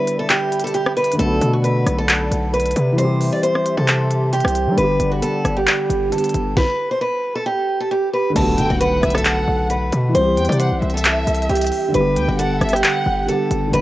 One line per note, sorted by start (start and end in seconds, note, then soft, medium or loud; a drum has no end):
0.00 1.12 D3 medium
0.00 1.15 G3 medium
0.00 1.17 B3 medium
0.00 1.19 E4 medium
0.00 1.15 G4 medium
0.00 0.17 B4 medium
0.00 1.16 D5 medium
0.00 1.18 E5 medium
0.00 2.95 B5 medium
0.08 closed hi-hat medium
0.19 0.27 A4 medium
0.30 0.62 G4 medium
0.30 clap loud
0.30 closed hi-hat medium
0.52 closed hi-hat medium
0.60 closed hi-hat medium
0.64 0.72 A4 medium
0.64 closed hi-hat medium
0.74 0.92 G4 medium
0.74 closed hi-hat medium
0.87 cross-stick loud
0.97 1.14 B4 medium
0.97 closed hi-hat soft
1.04 closed hi-hat medium
1.12 2.92 D3 medium
1.12 closed hi-hat medium
1.17 1.41 B1 loud
1.17 2.94 A3 medium
1.17 2.96 B3 medium
1.17 1.52 A4 loud
1.17 2.97 A4 medium
1.17 2.97 D5 medium
1.17 2.97 F#5 medium
1.17 closed hi-hat medium
1.25 2.98 F#4 medium
1.42 1.85 B2 loud
1.42 closed hi-hat medium
1.53 1.62 F#4 medium
1.64 1.96 B4 medium
1.64 closed hi-hat medium
1.87 2.30 B1 loud
1.87 cross-stick medium
1.87 closed hi-hat medium
1.99 2.50 A4 medium
2.09 clap loud
2.09 closed hi-hat medium
2.31 2.74 B1 loud
2.31 closed hi-hat medium
2.53 2.96 B4 medium
2.53 closed hi-hat medium
2.60 closed hi-hat medium
2.66 closed hi-hat medium
2.71 closed hi-hat medium
2.76 3.30 C3 loud
2.76 closed hi-hat medium
2.93 4.71 E3 medium
2.97 4.73 G3 medium
2.97 4.75 C4 medium
2.97 6.53 G4 medium
2.97 3.30 C5 medium
2.97 4.76 C5 medium
2.97 4.76 E5 medium
2.97 4.76 C6 medium
2.97 closed hi-hat medium
3.05 4.77 G4 medium
3.21 open hi-hat medium
3.33 3.41 D5 medium
3.43 3.75 C5 medium
3.43 closed hi-hat medium
3.55 cross-stick medium
3.66 closed hi-hat medium
3.77 4.42 C3 loud
3.77 4.29 A4 medium
3.88 clap loud
3.88 closed hi-hat medium
4.11 closed hi-hat medium
4.33 4.75 G4 medium
4.33 closed hi-hat medium
4.40 closed hi-hat medium
4.45 4.68 C2 loud
4.45 cross-stick loud
4.45 closed hi-hat medium
4.55 closed hi-hat medium
4.67 4.77 G3 loud
4.72 6.06 D3 medium
4.72 6.08 G3 medium
4.77 4.99 G1 loud
4.77 6.10 B3 medium
4.77 5.10 B4 loud
4.77 6.55 D5 medium
4.77 6.55 F#5 medium
4.77 6.55 B5 medium
4.77 closed hi-hat medium
4.84 6.12 G4 medium
5.00 5.21 G1 loud
5.00 closed hi-hat medium
5.12 5.20 F#4 medium
5.22 5.55 A4 loud
5.22 closed hi-hat medium
5.45 5.66 G1 loud
5.45 cross-stick medium
5.45 closed hi-hat medium
5.56 6.08 G4 medium
5.67 clap loud
5.67 closed hi-hat medium
5.89 6.11 G1 loud
5.89 closed hi-hat medium
6.09 6.55 D3 soft
6.09 6.56 G3 soft
6.09 6.57 B3 soft
6.09 6.54 A4 medium
6.09 closed hi-hat medium
6.15 6.58 G4 medium
6.15 closed hi-hat medium
6.24 closed hi-hat medium
6.29 closed hi-hat medium
6.34 6.56 G1 loud
6.34 closed hi-hat medium
6.57 6.89 B4 loud
6.57 kick loud
6.57 snare medium
6.91 6.99 C5 medium
7.01 7.34 B4 medium
7.36 7.44 A4 medium
7.46 7.78 G4 medium
7.80 7.89 A4 medium
7.91 8.08 G4 medium
8.13 8.31 B4 medium
8.30 10.08 D3 medium
8.30 10.10 A3 medium
8.36 8.60 B1 loud
8.36 10.12 B3 medium
8.36 8.68 A4 loud
8.36 closed hi-hat medium
8.36 crash loud
8.36 impact medium
8.42 10.14 F#4 medium
8.58 8.69 D3 loud
8.58 8.79 G5 medium
8.58 closed hi-hat medium
8.70 9.02 B1 loud
8.70 8.78 F#4 medium
8.80 9.13 B4 medium
8.80 9.02 F#5 medium
8.80 closed hi-hat medium
9.03 9.46 B1 loud
9.03 9.24 E5 medium
9.03 cross-stick medium
9.03 closed hi-hat medium
9.10 closed hi-hat medium
9.15 9.67 A4 medium
9.15 cross-stick medium
9.15 closed hi-hat medium
9.25 9.67 F#5 medium
9.25 clap loud
9.25 closed hi-hat medium
9.48 9.91 B1 loud
9.70 10.12 B4 medium
9.70 closed hi-hat medium
9.92 10.14 B2 loud
9.92 closed hi-hat medium
10.09 11.87 E3 medium
10.13 10.39 C2 loud
10.13 11.89 G3 medium
10.13 11.91 C4 medium
10.13 10.47 C5 loud
10.13 closed hi-hat medium
10.21 11.93 G4 medium
10.37 10.49 E2 loud
10.37 10.58 G5 medium
10.37 closed hi-hat medium
10.45 closed hi-hat medium
10.49 10.73 C3 loud
10.49 10.57 D5 medium
10.49 closed hi-hat medium
10.60 10.92 C5 medium
10.60 10.81 F#5 medium
10.60 closed hi-hat medium
10.71 10.82 B1 loud
10.82 11.25 C2 loud
10.82 11.90 E5 loud
10.82 closed hi-hat medium
10.90 closed hi-hat medium
10.94 11.46 A4 medium
10.94 closed hi-hat medium
11.04 clap loud
11.04 closed hi-hat medium
11.27 11.48 C2 loud
11.27 closed hi-hat medium
11.34 closed hi-hat medium
11.42 closed hi-hat medium
11.49 11.71 C2 loud
11.49 11.91 G4 medium
11.49 closed hi-hat medium
11.55 closed hi-hat medium
11.57 closed hi-hat medium
11.61 closed hi-hat medium
11.64 closed hi-hat medium
11.66 closed hi-hat medium
11.72 open hi-hat medium
11.88 13.23 D3 medium
11.92 12.18 G1 loud
11.92 13.25 G3 medium
11.92 13.27 B3 medium
11.92 12.26 B4 loud
11.92 closed hi-hat medium
12.00 13.29 G4 medium
12.16 12.28 D2 loud
12.16 12.38 G5 medium
12.16 closed hi-hat medium
12.28 12.60 G1 loud
12.28 12.36 F#4 medium
12.39 12.71 A4 loud
12.39 12.60 F#5 medium
12.39 closed hi-hat medium
12.61 12.83 G1 loud
12.61 12.82 E5 medium
12.61 cross-stick medium
12.61 closed hi-hat medium
12.69 closed hi-hat medium
12.73 13.25 G4 medium
12.73 cross-stick medium
12.73 closed hi-hat medium
12.84 13.26 F#5 medium
12.84 clap loud
12.84 closed hi-hat medium
13.06 13.27 G1 loud
13.26 13.66 D3 medium
13.26 13.70 G3 soft
13.26 13.74 B3 soft
13.26 13.71 A4 medium
13.26 closed hi-hat medium
13.31 13.75 G4 medium
13.51 13.72 G1 loud
13.51 closed hi-hat medium
13.67 13.81 D3 medium
13.67 13.81 G3 medium
13.73 13.81 E1 loud
13.73 13.81 B3 medium
13.73 13.81 B4 loud
13.73 closed hi-hat medium